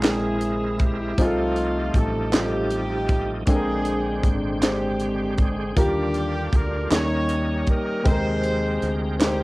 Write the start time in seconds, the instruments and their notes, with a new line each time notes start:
Already playing: fingered electric bass A#1, grand piano C3 G#3 C4 E4 G4 A#4, tonewheel organ G#3 C4 E4 A#4
0.02 grand piano G#3 C4 E4 A#4 G5, snare, clap, closed hi-hat
0.07 horn section E4 G#4
0.41 closed hi-hat
0.79 kick, closed hi-hat
0.84 horn section G4
1.18 fingered electric bass C2, grand piano C3 G3 C4 D#4 F4 G#4, tonewheel organ F3 A3 D#4 G4, horn section A3 F4, kick, closed hi-hat
1.26 grand piano A4
1.56 closed hi-hat
1.94 fingered electric bass A1, horn section A4, kick, closed hi-hat
2.32 grand piano G3 C4 D#4 F4 A4, horn section D#4 G4, snare, clap, closed hi-hat
2.70 closed hi-hat
3.09 kick, closed hi-hat
3.46 fingered electric bass A#1, grand piano A#2 G#3 C4 D4 A4 G5, tonewheel organ D3 G#3 C4 F#4, horn section C4 D4 G#4, kick, closed hi-hat
3.53 grand piano A#4, tonewheel organ G5
3.85 closed hi-hat
4.23 fingered electric bass G#1, kick, closed hi-hat
4.62 grand piano G#3 C4 D4 G4 C5, horn section C4 D4 G4, snare, clap, closed hi-hat
5.00 closed hi-hat
5.38 horn section G#4, kick, closed hi-hat
5.76 fingered electric bass D#2, grand piano D3 G3 D4 F4 G4 A#4, tonewheel organ D3 G3 D4 F4, horn section D4 G4, kick, closed hi-hat
5.80 horn section A#3
6.14 closed hi-hat
6.53 fingered electric bass D2, horn section A#4, kick, closed hi-hat
6.90 fingered electric bass D#2, grand piano D#3 G3 A#3 C#4 D#4 A#4, tonewheel organ G3 C#4 D#4 A#4, horn section G4 A#4 C#5, snare, clap, closed hi-hat
7.29 closed hi-hat
7.67 horn section A#4, kick, closed hi-hat
8.04 fingered electric bass D#2, grand piano C3 G#3 C4 D#4 A4 G5, tonewheel organ G#3 B3 A#4 G5, horn section G4 G#4 C5, kick, closed hi-hat
8.12 tonewheel organ C4, grand piano A#4
8.44 closed hi-hat
8.82 fingered electric bass D2, closed hi-hat
9.19 grand piano G#3 C4 D#4 G4 A#4, horn section A#3 C4 G4, snare, clap, closed hi-hat
9.27 grand piano C5